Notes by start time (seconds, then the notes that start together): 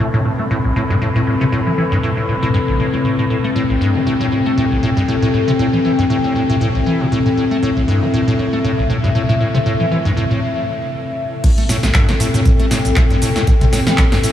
Already playing: C4 A4 B5
0.00 shaker
0.14 A2, shaker
0.25 A2, shaker
0.39 A3
0.51 A2, shaker
0.65 A1, shaker
0.76 A2
0.90 G2
1.01 A2, shaker
1.16 A2, shaker
1.27 A2, shaker
1.41 C3
1.52 A2, shaker
1.66 E3, shaker
1.78 E3, shaker
1.92 G2
2.03 A2, shaker
2.17 A2, shaker
2.29 A2, shaker
2.43 A2
2.54 G2, shaker
2.68 A1, shaker
2.79 A2, shaker
2.94 A2
3.05 A2, shaker
3.19 A2, shaker
3.30 A2 G5, shaker
3.44 A3
3.56 A2, shaker
3.70 A1, shaker
3.81 G2
3.95 A3
4.07 A2, shaker
4.21 A2
4.32 A2, shaker
4.46 A3
4.57 A2, shaker
4.71 A1, shaker
4.83 A2
4.97 G2
5.08 A2
5.22 A2
5.34 A2, shaker
5.48 C3
5.59 A2, shaker
5.73 E3, shaker
5.85 E3, shaker
5.99 G2
6.10 A2, shaker
6.24 A2, shaker
6.35 A2, shaker
6.49 A2
6.61 A2, shaker
6.75 A1, shaker
6.86 E3, shaker
7.00 A2
7.12 A2, shaker
7.26 A2, shaker
7.37 A2 E5, shaker
7.51 A3
7.63 A2, shaker
7.77 A1, shaker
7.88 G2
8.02 A3
8.13 A2, shaker
8.27 A2, shaker
8.39 A2, shaker
8.53 A3
8.64 A2, shaker
8.78 A1, shaker
8.90 A2, shaker
9.04 G2
9.15 A2, shaker
9.29 A2, shaker
9.40 A2, shaker
9.54 C3
9.66 A2, shaker
9.80 E3, shaker
9.91 E3, shaker
10.05 G2
10.17 A2, shaker
10.31 A2, shaker
11.44 A2 C4 A4 G5, kick, closed hi-hat, crash, shaker
11.58 A3, closed hi-hat
11.69 A2, snare, open hi-hat, shaker
11.83 A1, snare, closed hi-hat, shaker
11.94 G2, kick, clap, closed hi-hat, shaker
12.09 A3, snare, closed hi-hat
12.20 A2, open hi-hat, shaker
12.34 A2, closed hi-hat, shaker
12.46 A2, kick, closed hi-hat, shaker
12.60 A3, closed hi-hat
12.71 A2, snare, open hi-hat, shaker
12.85 A1, closed hi-hat, shaker
12.96 A2, kick, clap, closed hi-hat, shaker
13.10 G2, closed hi-hat
13.22 A2, open hi-hat, shaker
13.36 A2, snare, closed hi-hat, shaker
13.47 A2, kick, closed hi-hat, shaker
13.61 C3, kick, closed hi-hat
13.73 A2, snare, open hi-hat, shaker
13.87 E3, snare, shaker
13.98 E3, kick, clap, closed hi-hat, shaker
14.12 G2, snare, open hi-hat
14.24 A2, open hi-hat, shaker